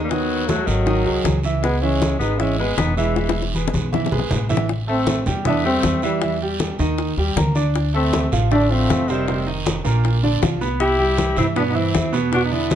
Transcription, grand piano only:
0.11 0.42 D#3 medium
0.11 0.42 D#4 medium
0.11 0.42 D#5 medium
0.49 0.80 F#3 medium
0.49 0.80 F#4 medium
0.49 0.80 A4 medium
0.86 1.02 D#3 medium
0.86 1.02 D#4 medium
0.86 1.02 D#5 medium
1.05 1.37 F#3 medium
1.05 1.37 F#4 medium
1.05 1.37 G#4 medium
1.44 1.60 E3 medium
1.44 1.60 E4 medium
1.44 1.60 E5 medium
1.63 1.79 G#3 medium
1.63 1.79 G#4 medium
1.63 1.79 B4 medium
1.82 2.14 E3 medium
1.82 2.14 E4 medium
1.82 2.14 E5 medium
2.20 2.36 G#3 medium
2.20 2.36 G#4 medium
2.20 2.36 B4 medium
2.40 2.55 E3 medium
2.40 2.56 E4 medium
2.40 2.56 E5 medium
2.60 2.91 G#3 medium
2.60 2.91 G#4 medium
2.60 2.91 B4 medium
2.97 3.13 E3 medium
2.97 3.13 E4 medium
2.97 3.13 E5 medium
3.16 3.48 E3 medium
3.16 3.48 E4 medium
3.16 3.48 E5 medium
3.55 3.86 G#3 medium
3.55 3.86 G#4 medium
3.55 3.87 B4 medium
3.93 4.08 E3 medium
3.93 4.08 E4 medium
3.93 4.09 E5 medium
4.11 4.43 G#3 medium
4.11 4.43 G#4 medium
4.11 4.43 B4 medium
4.49 4.65 E3 medium
4.49 4.66 E4 medium
4.49 4.66 E5 medium
4.87 5.19 A3 medium
4.87 5.20 A4 medium
4.87 5.20 A5 medium
5.26 5.42 G3 medium
5.26 5.42 G4 medium
5.26 5.42 G5 medium
5.45 5.61 E3 medium
5.45 5.62 E4 medium
5.45 5.62 E5 medium
5.64 5.96 G3 medium
5.64 5.96 G4 medium
5.64 5.96 G5 medium
6.02 6.18 E3 medium
6.02 6.19 E4 medium
6.02 6.19 E5 medium
6.22 6.38 E3 medium
6.22 6.38 E4 medium
6.22 6.38 E5 medium
6.42 6.73 G3 medium
6.42 6.73 G4 medium
6.42 6.74 G5 medium
6.79 7.11 D#3 medium
6.79 7.11 D#4 medium
6.79 7.11 D#5 medium
7.18 7.34 G3 medium
7.18 7.34 G4 medium
7.18 7.34 G5 medium
7.37 7.52 A#3 medium
7.37 7.53 A#4 medium
7.37 7.53 A#5 medium
7.55 7.87 D4 medium
7.55 7.87 D5 medium
7.55 7.87 D6 medium
7.93 8.25 A3 medium
7.93 8.26 A4 medium
7.93 8.26 A5 medium
8.32 8.48 F3 medium
8.32 8.48 F4 medium
8.32 8.48 F5 medium
8.51 8.67 D3 medium
8.51 8.67 D4 medium
8.51 8.67 D5 medium
8.70 9.01 F3 medium
8.70 9.02 F4 medium
8.70 9.02 F5 medium
9.09 9.25 C3 medium
9.09 9.25 C4 medium
9.09 9.25 C5 medium
9.28 9.44 C3 medium
9.28 9.44 C4 medium
9.28 9.44 C5 medium
9.47 9.78 D#3 medium
9.47 9.78 D#4 medium
9.47 9.78 D#5 medium
9.84 10.16 A#2 medium
9.84 10.16 A#3 medium
9.84 10.16 A#4 medium
10.23 10.39 D3 medium
10.23 10.39 D4 medium
10.23 10.39 D5 medium
10.42 10.58 F3 medium
10.42 10.58 F4 medium
10.42 10.58 F5 medium
10.61 10.93 B3 medium
10.61 10.93 B4 medium
10.61 10.93 B5 medium
10.99 11.30 G3 medium
10.99 11.30 G4 medium
10.99 11.31 G5 medium
11.36 11.53 E3 medium
11.36 11.53 E4 medium
11.36 11.53 E5 medium
11.56 11.72 B2 medium
11.56 11.72 B3 medium
11.56 11.72 B4 medium
11.74 12.06 E3 medium
11.74 12.06 E4 medium
11.74 12.06 E5 medium
12.12 12.29 B2 medium
12.12 12.29 B3 medium
12.12 12.29 B4 medium
12.32 12.48 B2 medium
12.32 12.48 B3 medium
12.32 12.48 B4 medium
12.51 12.75 D3 medium
12.51 12.75 D4 medium
12.51 12.75 D5 medium

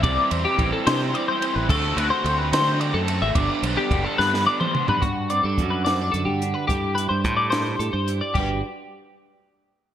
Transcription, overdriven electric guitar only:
0.03 0.58 C3 medium
0.03 0.57 E3 medium
0.03 0.32 G3 loud
0.03 0.31 C4 loud
0.03 0.30 E4 loud
0.31 0.57 G3 medium
0.31 0.59 C4 medium
0.31 0.60 E4 medium
0.57 1.12 E3 medium
0.57 0.87 G3 medium
0.57 0.86 C4 medium
0.57 0.84 E4 medium
0.85 1.13 G3 medium
0.85 1.14 C4 medium
0.85 1.14 E4 medium
1.13 1.67 E3 medium
1.13 1.42 G3 medium
1.13 1.40 C4 medium
1.13 1.39 E4 medium
1.41 1.68 G3 medium
1.41 1.67 C4 medium
1.41 1.67 E4 medium
1.69 2.22 D3 medium
1.69 1.98 A3 loud
1.69 1.96 C4 loud
1.69 1.95 F#4 loud
1.96 2.24 A3 medium
1.96 2.24 C4 medium
1.96 2.26 F#4 medium
2.23 2.77 D3 medium
2.23 2.53 A3 medium
2.23 2.51 C4 medium
2.23 2.51 F#4 medium
2.51 2.79 A3 medium
2.51 2.80 C4 medium
2.51 2.81 F#4 medium
2.79 3.33 D3 medium
2.79 3.08 A3 medium
2.79 3.07 C4 medium
2.79 3.07 F#4 medium
3.07 3.34 A3 medium
3.07 3.34 C4 medium
3.07 3.36 F#4 medium
3.34 3.90 G2 medium
3.34 3.89 D3 loud
3.34 3.64 G3 loud
3.34 3.63 B3 loud
3.34 3.62 D4 loud
3.63 3.90 G3 medium
3.63 3.91 B3 medium
3.63 3.92 D4 medium
3.91 4.46 D3 medium
3.91 4.19 G3 medium
3.91 4.18 B3 medium
3.91 4.17 D4 medium
4.18 4.46 G3 medium
4.18 4.47 B3 medium
4.18 4.48 D4 medium
4.47 5.00 D3 medium
4.47 4.76 G3 medium
4.47 4.75 B3 medium
4.47 4.73 D4 medium
4.74 5.01 G3 medium
4.74 5.01 B3 medium
4.74 5.00 D4 medium

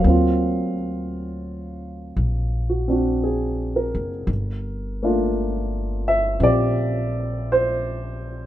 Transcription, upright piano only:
0.00 4.25 F#3 soft
0.00 4.27 A#3 soft
0.00 0.73 F5 medium
0.06 2.86 C4 soft
0.06 4.31 F4 soft
2.69 2.90 F#4 soft
2.88 4.28 C4 soft
2.88 4.29 D4 soft
2.88 4.30 F#4 soft
3.24 4.08 G#4 soft
3.76 4.51 A#4 soft
5.03 8.46 A3 soft
5.03 8.46 A#3 soft
5.03 8.46 D4 soft
5.03 6.41 F4 soft
6.08 6.38 E5 medium
6.40 8.46 C4 soft
6.40 8.46 F4 soft
6.40 8.46 G4 soft
6.40 7.50 D5 medium
7.52 8.46 C5 medium

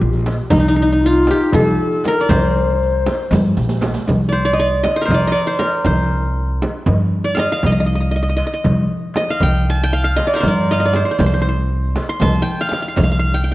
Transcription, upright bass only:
0.02 0.40 A#1 medium
0.53 1.29 C2 loud
1.54 1.73 C2 medium
2.29 3.06 C2 medium
3.31 3.50 G2 loud
3.57 3.95 A#1 medium
4.08 4.84 C2 medium
5.08 5.28 C2 medium
5.86 6.62 C2 medium
6.88 7.45 G2 medium
7.64 8.40 C2 loud
8.65 8.84 C2 medium
9.42 10.18 C2 medium
10.43 11.00 G2 medium
11.19 11.95 C2 loud
12.21 12.40 C2 medium
12.98 13.54 C2 medium

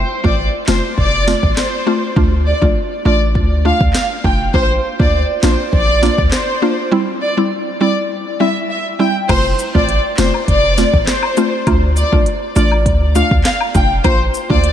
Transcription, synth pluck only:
0.24 0.38 A3 medium
0.24 0.38 C4 medium
0.24 0.38 F4 medium
0.68 0.84 A3 medium
0.68 0.84 C4 medium
0.68 0.84 F4 medium
1.27 1.43 A3 medium
1.27 1.43 C4 medium
1.27 1.43 F4 medium
1.86 2.02 A3 medium
1.86 2.03 C4 medium
1.86 2.03 F4 medium
2.16 2.32 A3 medium
2.16 2.32 D4 medium
2.16 2.32 F4 medium
2.62 2.76 A3 medium
2.62 2.76 D4 medium
2.62 2.76 F4 medium
3.05 3.21 A3 medium
3.05 3.21 D4 medium
3.05 3.22 F4 medium
3.65 3.81 A3 medium
3.65 3.81 D4 medium
3.65 3.81 F4 medium
4.24 4.40 A3 medium
4.24 4.40 D4 medium
4.24 4.41 F4 medium
4.54 4.70 A#3 medium
4.54 4.70 D4 medium
4.54 4.70 F4 loud
4.99 5.14 A#3 medium
4.99 5.14 D4 medium
4.99 5.14 F4 medium
5.43 5.59 A#3 medium
5.43 5.59 D4 medium
5.43 5.59 F4 medium
6.02 6.18 A#3 medium
6.02 6.18 D4 medium
6.02 6.19 F4 medium
6.62 6.78 A#3 medium
6.62 6.78 D4 medium
6.62 6.78 F4 medium
6.92 7.07 G3 medium
6.92 7.08 C4 medium
6.92 7.08 E4 loud
7.37 7.51 G3 medium
7.37 7.51 C4 medium
7.37 7.52 E4 medium
7.81 7.97 G3 medium
7.81 7.97 C4 medium
7.81 7.97 E4 medium
8.40 8.56 G3 medium
8.40 8.56 C4 medium
8.40 8.56 E4 medium
8.99 9.15 G3 medium
8.99 9.15 C4 medium
8.99 9.16 E4 medium
9.29 9.45 A3 medium
9.29 9.45 C4 medium
9.29 9.45 F4 loud
9.75 9.89 A3 medium
9.75 9.89 C4 medium
9.75 9.89 F4 medium
10.18 10.34 A3 medium
10.18 10.34 C4 medium
10.18 10.34 F4 medium
10.78 10.94 A3 medium
10.78 10.94 C4 medium
10.78 10.94 F4 medium
11.37 11.53 A3 medium
11.37 11.53 C4 medium
11.37 11.53 F4 medium
11.67 11.83 A3 medium
11.67 11.83 D4 medium
11.67 11.83 F4 loud
12.12 12.26 A3 medium
12.12 12.27 D4 medium
12.12 12.27 F4 medium
12.56 12.72 A3 medium
12.56 12.72 D4 medium
12.56 12.72 F4 medium
13.15 13.31 A3 medium
13.15 13.31 D4 medium
13.15 13.32 F4 medium
13.75 13.91 A3 medium
13.75 13.91 D4 medium
13.75 13.91 F4 medium
14.04 14.20 A#3 medium
14.04 14.20 D4 medium
14.04 14.21 F4 loud
14.50 14.64 A#3 medium
14.50 14.64 D4 medium
14.50 14.64 F4 medium

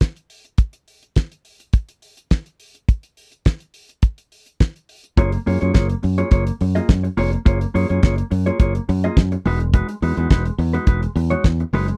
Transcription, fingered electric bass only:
5.18 5.36 F#1 loud
5.47 5.57 F#2 medium
5.62 5.70 F#2 medium
5.75 5.93 F#1 medium
6.04 6.22 F#2 loud
6.32 6.50 F#1 medium
6.61 6.79 F#2 medium
6.89 7.07 F#2 loud
7.17 7.35 F1 loud
7.46 7.64 F#1 loud
7.75 7.84 F#2 loud
7.90 7.98 F#2 medium
8.03 8.21 F#1 loud
8.32 8.49 F#2 loud
8.60 8.78 F#1 loud
8.89 9.07 F#2 loud
9.17 9.35 F#2 loud
9.46 9.81 E1 loud
10.02 10.12 E2 medium
10.17 10.26 E2 loud
10.31 10.49 E1 loud
10.58 10.77 E2 loud
10.87 11.05 E1 medium
11.16 11.34 E2 loud
11.45 11.63 E2 loud
11.73 11.91 F#1 medium

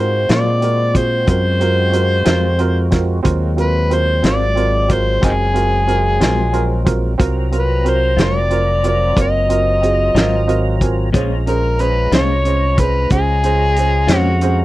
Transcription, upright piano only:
0.00 0.20 C4 medium
0.00 0.21 F4 soft
0.00 0.21 F#4 soft
0.00 0.21 A#4 medium
0.29 0.54 C4 soft
0.29 0.54 F4 soft
0.29 0.54 F#4 soft
0.29 0.55 A#4 medium
0.62 0.87 C4 soft
0.62 0.87 F4 soft
0.62 0.87 F#4 soft
0.62 0.87 A#4 medium
0.94 1.19 C4 soft
0.94 1.19 F4 soft
0.94 1.20 F#4 soft
0.94 1.20 G#4 medium
1.27 1.52 C4 medium
1.27 1.52 F4 soft
1.27 1.53 F#4 soft
1.27 1.53 A#4 medium
1.60 1.85 C4 soft
1.60 1.85 F4 soft
1.60 1.86 F#4 soft
1.60 1.86 A#4 medium
1.92 2.18 C4 medium
1.92 2.18 F4 soft
1.92 2.18 F#4 soft
1.92 2.18 A#4 medium
2.25 2.50 C4 medium
2.25 2.51 F4 medium
2.25 2.51 F#4 medium
2.25 2.51 A#4 medium
2.59 2.84 C4 medium
2.59 2.84 F4 medium
2.59 2.84 F#4 medium
2.59 2.84 A#4 medium
2.91 3.16 C4 medium
2.91 3.17 F4 medium
2.91 3.17 F#4 medium
2.91 3.17 A#4 medium
3.23 3.49 C4 medium
3.23 3.49 F4 medium
3.23 3.49 F#4 medium
3.23 3.49 A#4 medium
3.57 3.82 C4 soft
3.57 3.82 F4 soft
3.57 3.82 F#4 soft
3.57 3.83 A#4 soft
3.90 4.15 C4 medium
3.90 4.15 F4 soft
3.90 4.16 F#4 soft
3.90 4.16 A#4 medium
4.22 4.48 C4 medium
4.22 4.48 F4 soft
4.22 4.48 F#4 soft
4.22 4.49 A#4 medium
4.55 4.81 C4 medium
4.55 4.81 F4 soft
4.55 4.81 F#4 soft
4.55 4.82 A#4 medium
4.88 5.14 C4 soft
4.88 5.14 F4 soft
4.88 5.14 F#4 soft
4.88 5.14 A#4 medium
5.22 5.47 C4 medium
5.22 5.47 F4 soft
5.22 5.47 F#4 soft
5.22 5.47 A#4 medium
5.54 5.79 C4 soft
5.54 5.79 F4 soft
5.54 5.80 F#4 soft
5.54 5.80 A#4 medium
5.87 6.12 C4 soft
5.87 6.13 F4 soft
5.87 6.13 F#4 soft
5.87 6.13 A#4 medium
6.20 6.45 C4 medium
6.20 6.45 F4 medium
6.20 6.46 F#4 medium
6.20 6.46 A#4 medium
6.53 6.78 C4 medium
6.53 6.78 F4 medium
6.53 6.79 F#4 medium
6.53 6.79 A#4 medium
6.85 7.11 C4 medium
6.85 7.11 F4 soft
6.85 7.11 F#4 soft
6.85 7.11 A#4 medium
7.18 7.43 C4 medium
7.18 7.44 F4 medium
7.18 7.44 F#4 medium
7.18 7.44 A#4 medium
7.52 7.77 C4 soft
7.52 7.77 F4 soft
7.52 7.77 F#4 soft
7.52 7.77 A#4 medium
7.84 8.10 C4 soft
7.84 8.10 F4 soft
7.84 8.10 F#4 soft
7.84 8.10 A#4 medium
8.17 8.43 C4 soft
8.17 8.43 F4 soft
8.17 8.43 F#4 soft
8.17 8.43 A#4 medium
8.50 8.75 C4 medium
8.50 8.76 F4 soft
8.50 8.76 F#4 soft
8.50 8.76 A#4 medium
8.84 9.09 C4 medium
8.84 9.09 F4 soft
8.84 9.09 F#4 soft
8.84 9.09 A#4 medium
9.16 9.41 C4 medium
9.16 9.41 F4 soft
9.16 9.42 F#4 soft
9.16 9.42 A#4 medium
9.49 9.74 C4 medium
9.49 9.74 F4 soft
9.49 9.74 F#4 soft
9.49 9.75 A#4 medium
9.82 10.07 C4 medium
9.82 10.07 F4 soft
9.82 10.07 F#4 soft
9.82 10.07 G#4 medium
10.15 10.40 C4 medium
10.15 10.40 F4 medium
10.15 10.41 F#4 medium
10.15 10.41 A#4 medium
10.47 10.72 C4 medium
10.47 10.73 F4 medium
10.47 10.73 F#4 medium
10.47 10.73 A#4 medium
10.47 10.78 D#5 medium
10.81 11.06 C4 medium
10.81 11.06 F4 soft
10.81 11.06 F#4 medium
10.81 11.06 A#4 medium
10.81 11.12 G#5 soft
11.15 11.39 C#4 medium
11.15 11.39 G#4 medium
11.15 11.39 C5 medium
11.47 11.71 C#4 soft
11.47 11.72 G#4 soft
11.47 11.72 C5 medium
11.80 12.04 C#4 soft
11.80 12.05 G#4 soft
11.80 12.05 C5 medium
12.12 12.37 C#4 soft
12.12 12.37 G#4 soft
12.12 12.38 C5 medium
12.45 12.70 C#4 soft
12.45 12.70 G#4 soft
12.45 12.70 C5 medium
12.78 13.03 C#4 soft
12.78 13.03 G#4 soft
12.78 13.03 C5 medium
13.11 13.36 C#4 soft
13.11 13.36 G#4 soft
13.11 13.36 C5 medium
13.43 13.68 C#4 medium
13.43 13.69 G#4 soft
13.43 13.69 C5 medium
13.77 14.02 C#4 soft
13.77 14.02 G#4 soft
13.77 14.02 C5 medium
14.09 14.34 C#4 medium
14.09 14.35 G#4 medium
14.09 14.35 C5 medium
14.42 14.65 C#4 medium
14.42 14.65 G#4 medium
14.42 14.65 C5 medium

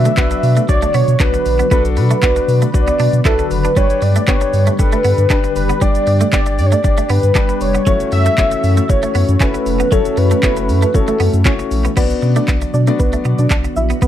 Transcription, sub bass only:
0.17 0.34 B1 loud
0.43 0.60 B2 loud
0.69 0.86 B1 loud
0.94 1.03 B2 loud
1.08 1.16 B2 loud
1.20 1.37 B1 loud
1.46 1.62 A#1 medium
1.71 1.98 B1 loud
1.97 2.14 B2 loud
2.23 2.39 B1 loud
2.48 2.65 B2 loud
2.74 2.91 B1 loud
3.00 3.08 B2 loud
3.13 3.21 B2 loud
3.25 3.42 B1 loud
3.51 3.67 F#1 loud
3.77 3.93 G1 loud
4.02 4.19 G2 loud
4.28 4.44 G1 loud
4.53 4.70 G2 loud
4.79 4.96 G1 loud
5.05 5.13 G2 loud
5.18 5.26 G2 loud
5.30 5.47 G1 loud
5.56 5.73 F#1 medium
5.82 5.98 G1 loud
6.07 6.24 G2 medium
6.33 6.60 G1 loud
6.58 6.75 G2 loud
6.84 7.01 G1 loud
7.10 7.19 G2 loud
7.23 7.31 G2 loud
7.35 7.52 G1 medium
7.61 7.78 F1 medium
7.87 8.03 F#1 loud
8.12 8.29 F#2 loud
8.38 8.55 F#1 loud
8.64 8.80 F#2 loud
8.89 9.06 F#1 loud
9.15 9.24 F#2 loud
9.29 9.36 F#2 loud
9.40 9.57 F#1 loud
9.66 9.83 F1 medium
9.92 10.08 F#1 loud
10.17 10.34 F#2 loud
10.43 10.70 F#1 loud
10.69 10.85 F#2 loud
10.95 11.11 F#1 loud
11.20 11.29 F#2 loud
11.34 11.47 F#2 loud
11.45 11.62 F#1 loud
11.71 11.88 A#1 loud
11.97 12.14 B1 loud
12.23 12.39 B2 loud
12.48 12.65 B1 loud
12.74 12.90 B2 loud
13.00 13.16 B1 loud
13.25 13.34 B2 loud
13.39 13.47 B2 loud
13.50 13.67 B1 loud
13.76 13.93 A#1 medium
14.02 14.07 B1 loud

